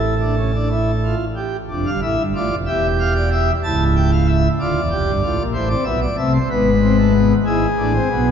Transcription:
pipe organ
Already playing: A1 A2 E4 A4
0.20 D4
0.38 C#4
0.55 D4
0.71 E4
1.05 F4
1.36 G4
1.70 F1 F2 D4
1.87 G1 G2 F5
2.02 A1 A2 E4 E5
2.18 G1 G2
2.35 A1 A2 F4 D5
2.51 F1 F2
2.66 E1 E2 G4 E5
3.00 F5
3.15 D5
3.32 E5
3.64 C#1 C#2 E4 A5
3.97 G5
4.13 F5
4.28 E5
4.60 D1 D2 F4 D5
4.76 E1 E2
4.91 F1 F2 G4
5.06 G1 G2
5.23 A1 A2 F4
5.39 A#1 A#2
5.53 A1 A2 E4 C5
5.69 C4 D5
5.84 B1 B2 B3 E5
6.01 D5
6.17 C2 C3 A3 E5
6.34 C5
6.49 G#1 G#2 B3 B4
6.83 C4
6.98 A3
7.15 B3
7.45 G#1 G#2 E4 G#4
7.78 A1 A2 D4
7.95 C4
8.11 B1 B2 B3

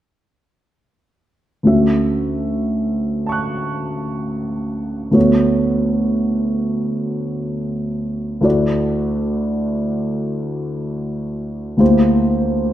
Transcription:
grand piano
1.63 D2 A3 C#4 F#4 E5
3.26 A5 C#6
3.32 F#6
5.11 D2 A3 B3 F#4 C#5
8.41 D2 A3 E4 F#4 D5
11.77 D2 A#3 E4 G4 C5

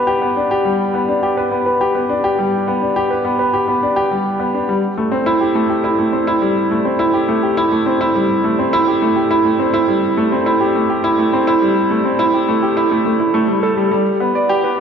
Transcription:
grand piano
Already playing: G3 B3 D4 G4 B4
0.07 G4
0.22 B3
0.37 D4
0.51 G4
0.65 G3
0.94 B3
1.09 D4
1.23 G4
1.37 B4
1.52 B3
1.66 B4
1.81 G4
1.95 B3
2.09 D4
2.24 G4
2.39 G3
2.68 B3
2.82 D4
2.96 G4
3.11 B4
3.25 B3
3.39 B4
3.53 G4
3.68 B3
3.83 D4
3.96 G4
4.11 G3
4.40 B3
4.54 D4
4.69 G3
4.98 A3
5.12 C4
5.26 E4
5.41 G4
5.55 A3
5.70 G4
5.84 E4
5.99 A3
6.13 C4
6.27 E4
6.42 G3
6.71 A3
6.85 C4
6.99 E4
7.14 G4
7.29 A3
7.43 G4
7.57 E4
7.72 A3
7.86 C4
8.01 E4
8.15 G3
8.44 A3
8.59 C4
8.73 E4
8.88 G4
9.02 A3
9.16 G4
9.31 E4
9.45 A3
9.59 C4
9.74 E4
9.88 G3
10.17 A3
10.32 C4
10.46 E4
10.60 G4
10.75 A3
10.90 G4
11.04 E4
11.19 A3
11.33 C4
11.47 E4
11.62 G3
11.90 A3
12.05 C4
12.19 E4
12.34 G4
12.48 A3
12.63 G4
12.77 E4
12.91 A3
13.05 A3
13.20 E4
13.34 A3
13.48 G3
13.63 A4
13.77 G3
13.91 G3
14.20 B3
14.35 D5
14.49 G4
14.64 B4

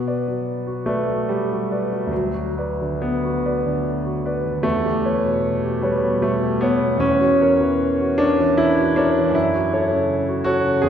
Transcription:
grand piano
Already playing: B2 B3 F#4
0.07 B4 D5
0.27 F#3
0.67 F#4
0.86 A3 B4 D5
1.09 F#3
1.29 G3
1.52 F#4
1.71 B4 D5
1.92 F#3
2.07 D2
2.11 F#3
2.34 F#4
2.57 B4 D5
2.81 D3
3.02 B3
3.25 F#4
3.46 B4 D5
3.66 D3
4.05 F#4
4.26 B4 D5
4.45 D3
4.63 E2 A3
4.85 G4
5.04 B4 C#5
5.24 B2
5.63 G4
5.82 G3 B4 C#5
6.03 B2
6.22 A3
6.41 G4
6.61 B3 B4 C#5
6.81 B2
6.98 E2 C#4
7.20 F#4
7.41 A#4 C#5
7.61 E3
8.01 F#4
8.18 D4 A#4 C#5
8.40 E3
8.57 E4
8.80 F#4
8.96 D4 A#4 C#5
9.18 E3
9.31 F#2 E4
9.54 F#4
9.73 A4 C#5
9.93 C#3
10.29 F#4
10.44 F#4 A4 C#5
10.64 C#3
10.82 E2 G#4

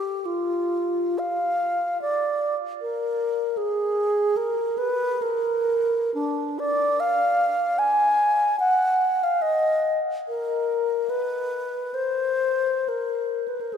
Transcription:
alto flute
Already playing: G4
0.25 F4
1.18 F5
2.02 D5
2.81 A#4
3.57 G#4
4.37 A#4
4.78 B4
5.22 A#4
6.14 D4
6.59 D5
7.00 F5
7.79 G#5
8.59 F#5
9.23 F5
9.42 D#5
10.28 A#4
11.10 B4
11.94 C5
12.88 A#4
13.48 B4
13.61 A#4
13.73 G#4

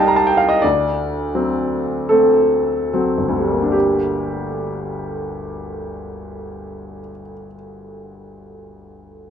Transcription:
grand piano
Already playing: C2 G3 D#4 D#5 F5 G5 A5
0.08 A#5
0.16 A5
0.27 G5
0.37 F5
0.49 D#5
0.62 D2 D5
1.35 F#3 C4
2.09 A3 C4 A4
2.94 F#3 C4
3.17 G1
3.28 D2
3.40 G3
3.51 A#3
3.62 D4
3.72 G4

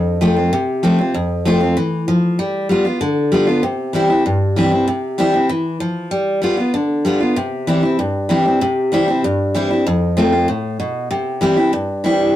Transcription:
steel-string acoustic guitar
Already playing: F2
0.21 F3 A3 C4 F4
0.36 C4 F4
0.53 C3
0.83 F3 A3 C4 F4
0.98 C4 F4
1.14 F2
1.45 F3 A3 C4 F4
1.61 C4 F4
1.77 E3
2.08 F3
2.39 G3
2.69 G3 B3 F4
2.85 B3 F4
3.01 D3
3.32 G3 B3 F4
3.47 B3 F4
3.63 C3
3.93 E3 G3 C4 E4
4.10 C4 E4
4.26 G2
4.56 E3 G3 C4 E4
4.72 C4 E4
4.88 C3
5.18 E3 G3 C4 E4
5.34 C4 E4
5.49 E3
5.80 F3
6.11 G3
6.42 G3 B3 F4
6.57 B3 F4
6.74 D3
7.05 G3 B3 F4
7.20 B3 F4
7.36 C3
7.67 E3 G3 C4 E4
7.83 C4 E4
7.99 G2
8.29 E3 G3 C4 E4
8.45 C4 E4
8.61 C3
8.92 E3 G3 C4 E4
9.08 C4 E4
9.24 G2
9.54 E3 G3 C4 E4
9.71 C4 E4
9.87 F2
10.17 F3 A3 C4 F4
10.32 C4 F4
10.48 A2
10.80 B2
11.11 C3
11.41 E3 G3 C4 E4
11.57 C4 E4
11.73 G2
12.04 E3 G3 C4 E4

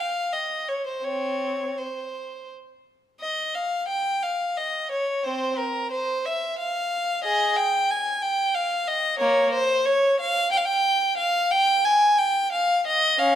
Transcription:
violin
0.00 F5
0.33 D#5
0.68 C#5
0.86 C5
1.03 C4 C#5
1.78 C5
3.20 D#5
3.54 F5
3.88 G5
4.23 F5
4.57 D#5
4.91 C#5
5.24 C4 C5
5.58 A#4
5.91 C5
6.26 E5
6.58 F5
7.24 G#4 D#5
7.57 G5
7.90 G#5
8.22 G5
8.55 F5
8.87 D#5
9.19 A#3 C#5
9.53 C5
9.86 C#5
10.20 F5
10.51 G5
10.57 F5
10.65 G5
11.17 F5
11.51 G5
11.84 G#5
12.18 G5
12.52 F5
12.86 D#5
13.18 C#4 F5

